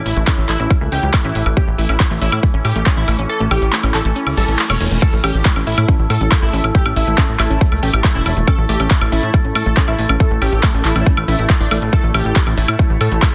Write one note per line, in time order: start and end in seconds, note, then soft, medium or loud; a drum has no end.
0.00 5.03 E3 medium
0.00 1.59 E4 medium
0.00 13.35 E4 medium
0.00 13.35 A4 medium
0.00 13.35 A5 medium
0.06 0.13 A1 loud
0.06 0.28 E4 medium
0.06 open hi-hat loud
0.17 0.24 A1 medium
0.17 0.26 A3 medium
0.17 closed hi-hat medium
0.27 0.34 C#4 medium
0.27 kick loud
0.27 clap loud
0.27 closed hi-hat medium
0.27 high woodblock soft
0.38 0.46 A1 medium
0.49 0.57 A1 loud
0.49 0.58 A3 medium
0.49 0.72 E4 medium
0.49 clap medium
0.49 open hi-hat medium
0.60 0.67 A1 medium
0.60 0.66 C#4 medium
0.60 closed hi-hat medium
0.71 kick loud
0.71 closed hi-hat medium
0.71 high woodblock soft
0.81 0.89 C#2 medium
0.81 0.91 A3 medium
0.92 1.00 C#2 loud
0.92 0.98 C#4 medium
0.92 1.09 G4 medium
0.92 open hi-hat loud
1.03 1.11 C#2 medium
1.03 closed hi-hat medium
1.14 1.23 A3 medium
1.14 kick loud
1.14 clap loud
1.14 closed hi-hat medium
1.14 high woodblock medium
1.24 1.32 A1 medium
1.24 1.31 C#4 medium
1.24 1.41 E4 medium
1.35 1.43 A1 loud
1.35 open hi-hat medium
1.46 1.54 A1 medium
1.46 1.55 A3 medium
1.46 closed hi-hat medium
1.46 high woodblock soft
1.57 1.63 C#4 medium
1.57 5.04 C#4 medium
1.57 1.68 G4 loud
1.57 kick loud
1.57 closed hi-hat medium
1.68 1.75 A1 medium
1.78 1.86 A1 loud
1.78 1.88 A3 medium
1.78 2.01 E4 medium
1.78 open hi-hat loud
1.89 1.97 A1 medium
1.89 1.95 C#4 medium
1.89 closed hi-hat medium
1.89 high woodblock soft
2.00 kick loud
2.00 clap loud
2.00 closed hi-hat medium
2.11 2.18 A1 medium
2.11 2.20 A3 medium
2.22 2.29 A1 loud
2.22 2.28 C#4 medium
2.22 2.44 E4 medium
2.22 open hi-hat medium
2.32 2.40 A2 medium
2.32 closed hi-hat medium
2.32 high woodblock medium
2.43 2.52 A3 medium
2.43 kick loud
2.43 closed hi-hat medium
2.54 2.62 A1 medium
2.54 2.60 C#4 medium
2.65 2.72 A2 loud
2.65 2.82 G4 medium
2.65 open hi-hat loud
2.65 high woodblock soft
2.76 2.83 A1 medium
2.76 2.85 A3 medium
2.76 closed hi-hat medium
2.86 2.93 C#4 medium
2.86 kick loud
2.86 clap loud
2.86 closed hi-hat medium
2.97 3.05 A1 medium
2.97 3.14 E4 medium
3.08 3.16 A1 loud
3.08 3.17 A3 medium
3.08 open hi-hat medium
3.08 high woodblock soft
3.19 3.26 A1 medium
3.19 3.25 C#4 medium
3.19 closed hi-hat medium
3.29 3.41 A4 loud
3.29 closed hi-hat medium
3.40 3.48 A1 medium
3.40 3.50 A3 medium
3.51 3.59 A1 loud
3.51 3.57 C#4 medium
3.51 3.74 G4 medium
3.51 open hi-hat loud
3.51 high woodblock medium
3.62 3.70 A1 medium
3.62 closed hi-hat medium
3.73 3.82 A3 medium
3.73 clap loud
3.73 closed hi-hat medium
3.83 3.91 A1 medium
3.83 3.90 C#4 medium
3.83 high woodblock soft
3.94 4.02 A1 loud
3.94 4.17 A4 medium
3.94 clap medium
3.94 open hi-hat loud
4.05 4.13 A1 loud
4.05 4.14 A3 medium
4.05 closed hi-hat medium
4.16 4.22 C#4 medium
4.16 closed hi-hat medium
4.16 reverse cymbal medium
4.27 4.34 C#2 medium
4.27 high woodblock soft
4.37 4.45 A1 loud
4.37 4.44 G3 medium
4.37 4.54 A4 medium
4.37 open hi-hat loud
4.48 4.56 A1 medium
4.48 4.54 A3 medium
4.48 closed hi-hat medium
4.59 4.63 A3 medium
4.59 clap loud
4.59 closed hi-hat medium
4.70 4.77 E1 medium
4.70 4.74 A3 medium
4.70 4.87 C#5 medium
4.70 high woodblock medium
4.81 4.88 E1 loud
4.81 4.87 A3 medium
4.81 open hi-hat medium
4.81 zap medium
4.91 4.99 E1 medium
4.91 4.98 A3 loud
4.91 closed hi-hat medium
5.02 13.35 A3 medium
5.02 11.95 A4 medium
5.02 5.14 A4 loud
5.02 kick loud
5.02 closed hi-hat medium
5.02 crash loud
5.02 high woodblock soft
5.13 5.21 A1 medium
5.13 5.22 A3 medium
5.24 5.31 A1 loud
5.24 5.30 C#4 medium
5.24 5.46 G4 loud
5.24 open hi-hat loud
5.24 high woodblock medium
5.35 5.42 A1 medium
5.35 closed hi-hat medium
5.45 5.55 A3 medium
5.45 kick loud
5.45 clap loud
5.45 closed hi-hat medium
5.56 5.64 A1 medium
5.56 5.62 C#4 medium
5.56 high woodblock soft
5.67 5.75 A1 loud
5.67 5.90 E4 medium
5.67 open hi-hat loud
5.78 5.85 A2 loud
5.78 5.87 A3 medium
5.78 closed hi-hat medium
5.78 high woodblock medium
5.88 5.95 C#4 medium
5.88 kick loud
5.88 closed hi-hat medium
5.99 6.07 A1 medium
6.10 6.18 A2 loud
6.10 6.19 A3 medium
6.10 6.27 A4 medium
6.10 open hi-hat loud
6.10 high woodblock soft
6.21 6.29 A1 loud
6.21 6.27 C#4 medium
6.21 closed hi-hat medium
6.32 6.51 A3 medium
6.32 kick loud
6.32 clap loud
6.32 closed hi-hat medium
6.32 high woodblock medium
6.42 6.50 A1 medium
6.42 6.52 A3 medium
6.42 6.59 E4 medium
6.53 6.61 A1 loud
6.53 6.59 C#4 medium
6.53 open hi-hat medium
6.64 6.72 A1 loud
6.64 closed hi-hat medium
6.64 high woodblock soft
6.75 6.84 A3 medium
6.75 6.86 G4 loud
6.75 kick loud
6.75 closed hi-hat medium
6.86 6.93 A1 medium
6.86 6.92 C#4 medium
6.86 high woodblock medium
6.96 7.04 A1 loud
6.96 7.19 E4 medium
6.96 open hi-hat loud
7.07 7.15 A1 medium
7.07 7.16 A3 medium
7.07 7.59 A3 medium
7.07 closed hi-hat medium
7.18 7.24 C#4 medium
7.18 kick loud
7.18 clap loud
7.18 closed hi-hat medium
7.18 high woodblock soft
7.29 7.36 A1 medium
7.40 7.47 A1 loud
7.40 7.49 A3 medium
7.40 7.62 E4 medium
7.40 clap medium
7.40 open hi-hat loud
7.40 high woodblock medium
7.50 7.58 A1 loud
7.50 7.57 C#4 medium
7.50 closed hi-hat medium
7.61 7.81 A3 medium
7.61 kick loud
7.61 closed hi-hat medium
7.72 7.80 C#2 medium
7.72 7.81 A3 medium
7.72 high woodblock soft
7.83 7.90 A1 loud
7.83 7.89 C#4 medium
7.83 8.00 G4 loud
7.83 open hi-hat loud
7.94 8.01 A1 medium
7.94 closed hi-hat medium
7.94 high woodblock medium
8.04 8.14 A3 medium
8.04 kick loud
8.04 clap loud
8.04 closed hi-hat medium
8.15 8.23 E1 medium
8.15 8.22 C#4 medium
8.15 8.21 C#4 medium
8.15 8.32 E4 loud
8.26 8.34 E1 loud
8.26 8.33 C#4 medium
8.26 open hi-hat loud
8.26 high woodblock soft
8.37 8.44 E1 medium
8.37 8.46 A3 medium
8.37 closed hi-hat medium
8.47 8.54 C#4 medium
8.47 8.59 A4 loud
8.47 kick loud
8.47 closed hi-hat medium
8.47 high woodblock medium
8.58 8.66 A1 medium
8.69 8.77 A1 loud
8.69 8.78 A3 medium
8.69 8.92 G4 loud
8.69 open hi-hat loud
8.80 8.88 A1 medium
8.80 8.86 C#4 medium
8.80 closed hi-hat medium
8.80 high woodblock soft
8.91 kick loud
8.91 clap loud
8.91 closed hi-hat medium
9.01 9.09 A1 medium
9.01 9.11 A3 medium
9.01 high woodblock medium
9.12 9.20 A1 loud
9.12 9.18 C#4 medium
9.12 9.35 E4 medium
9.12 open hi-hat loud
9.23 9.31 A2 medium
9.23 closed hi-hat medium
9.34 9.43 A3 medium
9.34 kick loud
9.34 closed hi-hat medium
9.34 high woodblock soft
9.45 9.52 A1 medium
9.45 9.51 C#4 medium
9.55 9.63 A2 loud
9.55 9.72 A4 loud
9.55 open hi-hat loud
9.55 high woodblock medium
9.66 9.74 A1 medium
9.66 9.75 A3 medium
9.66 closed hi-hat medium
9.77 9.96 A3 loud
9.77 9.83 C#4 medium
9.77 kick loud
9.77 clap loud
9.77 closed hi-hat medium
9.88 9.95 A1 medium
9.88 10.05 E4 medium
9.88 high woodblock soft
9.99 10.06 A1 loud
9.99 10.08 A3 medium
9.99 open hi-hat loud
10.09 10.17 A1 medium
10.09 10.16 C#4 medium
10.09 closed hi-hat medium
10.09 high woodblock medium
10.20 10.31 A4 loud
10.20 kick loud
10.20 closed hi-hat medium
10.31 10.39 A1 medium
10.31 10.40 A3 medium
10.42 10.49 A1 loud
10.42 10.48 C#4 medium
10.42 10.64 G4 medium
10.42 open hi-hat loud
10.42 high woodblock soft
10.53 10.60 A1 medium
10.53 10.95 A3 loud
10.53 closed hi-hat medium
10.63 10.73 A3 medium
10.63 kick loud
10.63 clap loud
10.63 closed hi-hat medium
10.63 high woodblock medium
10.74 10.82 A1 medium
10.74 10.80 C#4 medium
10.85 10.93 A1 loud
10.85 11.08 E4 medium
10.85 clap medium
10.85 open hi-hat loud
10.96 11.03 A1 loud
10.96 11.05 A3 medium
10.96 11.15 C#4 loud
10.96 closed hi-hat medium
10.96 high woodblock soft
11.06 11.13 C#4 medium
11.06 kick loud
11.06 closed hi-hat medium
11.17 11.25 A1 medium
11.17 high woodblock medium
11.28 11.36 A1 medium
11.28 11.34 C#4 medium
11.28 11.45 E4 loud
11.28 open hi-hat loud
11.39 11.47 A1 loud
11.39 11.45 A3 medium
11.39 closed hi-hat medium
11.50 11.56 A4 medium
11.50 kick loud
11.50 clap loud
11.50 closed hi-hat medium
11.50 high woodblock soft
11.60 11.68 A1 medium
11.60 11.77 D4 loud
11.60 11.67 E4 medium
11.71 11.79 A1 loud
11.71 12.04 A3 medium
11.71 11.75 A3 loud
11.71 open hi-hat loud
11.71 zap medium
11.71 high woodblock medium
11.82 11.90 A1 medium
11.82 closed hi-hat medium
11.93 12.04 A4 loud
11.93 13.35 C#5 medium
11.93 kick loud
11.93 closed hi-hat medium
11.93 high woodblock soft
12.04 12.11 A1 medium
12.04 12.13 A3 medium
12.14 12.22 A1 loud
12.14 12.24 A3 medium
12.14 12.37 G4 loud
12.14 open hi-hat loud
12.14 high woodblock medium
12.25 12.33 A1 medium
12.25 closed hi-hat medium
12.36 12.45 A3 medium
12.36 kick loud
12.36 clap loud
12.36 closed hi-hat medium
12.47 12.54 A1 medium
12.47 12.56 A3 medium
12.47 high woodblock soft
12.58 12.65 A1 loud
12.58 12.80 E4 medium
12.58 open hi-hat loud
12.68 12.76 A2 medium
12.68 12.78 A3 medium
12.68 closed hi-hat medium
12.68 high woodblock medium
12.79 12.88 A3 medium
12.79 kick loud
12.79 closed hi-hat medium
12.90 12.98 A1 medium
13.01 13.08 A2 loud
13.01 13.10 A3 medium
13.01 13.18 A4 medium
13.01 open hi-hat loud
13.01 high woodblock soft
13.12 13.19 A1 medium
13.12 13.21 A3 medium
13.12 closed hi-hat medium
13.22 13.35 A3 medium
13.22 kick loud
13.22 clap loud
13.22 closed hi-hat medium
13.22 high woodblock medium